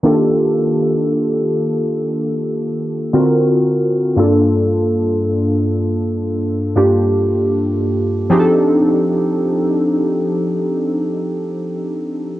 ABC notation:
X:1
M:4/4
L:1/8
Q:"Swing 16ths" 1/4=58
K:Fmix
V:1 name="Synth keys"
[E,B,DFGA]6 [D,C^E^F^A]2 | [G,,B,DFA]4- [G,,B,DFA] [G,,B,DFG]3 | [F,CDEG_A=A]8 |]